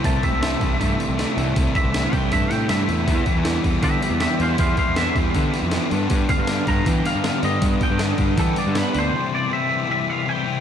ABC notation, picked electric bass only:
X:1
M:4/4
L:1/16
Q:1/4=158
K:C
V:1 name="Picked electric bass" clef=bass
C,,2 z C,,3 C,,2 G,,2 z C,,2 z C,,2 | C,,2 z C,,3 C,,2 G,,2 A,,2 G,,2 E,,2 | E,,2 z E,,3 E,,2 D,2 z E,,2 z E,,2 | E,,2 z E,,3 E,,2 D,2 z F,,2 z G,,2 |
G,,2 z G,,3 G,,2 E,2 z G,,2 z G,,2 | G,,2 z G,,3 G,,2 E,2 z G,,2 z D,,2 | z16 |]